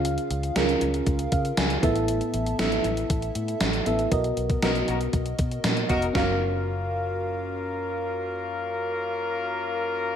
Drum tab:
HH |xxxxxxxxxxxxxxxx|xxxxxxxxxxxxxxxx|xxxxxxxxxxxxxxxx|----------------|
SD |----o-------o---|----o-------o---|----o-------o---|o---------------|
BD |--------o-o---o-|--------o-------|o--o----o-o---o-|o---------------|

HH |----------------|
SD |----------------|
BD |----------------|